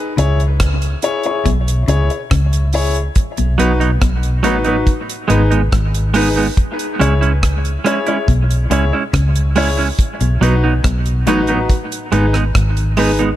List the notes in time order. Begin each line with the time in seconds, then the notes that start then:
0.17 C#2 C#3 E4 G#4 C#5, closed hi-hat
0.40 closed hi-hat
0.60 kick, cross-stick, closed hi-hat
0.82 closed hi-hat
1.02 E4 G#4 C#5, closed hi-hat
1.23 E4 G#4 C#5, closed hi-hat
1.45 B1 B2, kick, closed hi-hat
1.68 closed hi-hat
1.88 C#2 C#3 E4 G#4 C#5, closed hi-hat
2.10 G#4 C#5, closed hi-hat
2.31 C#2 C#3, kick, cross-stick, closed hi-hat
2.53 closed hi-hat
2.73 E4 G#4 C#5, open hi-hat
2.94 closed hi-hat
3.16 kick, closed hi-hat
3.37 B1 B2, closed hi-hat
3.58 B1 B2 F#3 B3 D#4 F#4 B4, closed hi-hat
3.80 F#3 B3 D#4, closed hi-hat
4.01 B1 B2, kick, cross-stick, closed hi-hat
4.23 closed hi-hat
4.43 A1 A2 F#3 B3 D#4 F#4 B4, closed hi-hat
4.64 F#3 B3 D#4 F#4 B4, closed hi-hat
4.87 kick, closed hi-hat
5.09 closed hi-hat
5.28 G#1 G#2 G#3 B3 D#4 G#4 B4, closed hi-hat
5.51 G#3 B3 D#4 G#4 B4, closed hi-hat
5.72 G#1 G#2, kick, cross-stick, closed hi-hat
5.94 closed hi-hat
6.14 G#3 B3 D#4 G#4 B4, open hi-hat
6.36 G#3 B3 D#4
6.57 kick, closed hi-hat
6.79 closed hi-hat
7.00 C#2 C#3 G#3 C#4 E4 G#4 C#5, closed hi-hat
7.21 G#3 C#4 E4, closed hi-hat
7.43 kick, cross-stick, closed hi-hat
7.65 closed hi-hat
7.85 G#3 C#4 E4 G#4 C#5, closed hi-hat
8.06 G#3 C#4 E4 G#4 C#5, closed hi-hat
8.28 B1 B2, kick, closed hi-hat
8.51 closed hi-hat
8.70 C#2 C#3 G#3 C#4 E4 G#4 C#5, closed hi-hat
8.93 G#3 C#4 E4 G#4 C#5
9.13 C#2 C#3, kick, cross-stick, closed hi-hat
9.36 closed hi-hat
9.56 G#3 C#4 E4 G#4 C#5, open hi-hat
9.78 G#3 C#4 E4
9.99 kick, closed hi-hat
10.21 B1 B2, closed hi-hat
10.41 B1 B2 F#3 B3 D#4 F#4 B4, closed hi-hat
10.64 F#3 B3 D#4
10.84 B1 B2, kick, cross-stick, closed hi-hat
11.06 closed hi-hat
11.27 A1 A2 F#3 B3 D#4 F#4 B4, closed hi-hat
11.47 F#3 B3 D#4 F#4 B4, closed hi-hat
11.70 kick, closed hi-hat
11.92 closed hi-hat
12.12 G#1 G#2 G#3 B3 D#4 G#4 B4, closed hi-hat
12.33 G#3 B3 D#4 G#4 B4, cross-stick, closed hi-hat
12.55 G#1 G#2, kick, cross-stick, closed hi-hat
12.77 closed hi-hat
12.97 G#3 B3 D#4 G#4 B4, open hi-hat
13.19 G#3 B3 D#4, closed hi-hat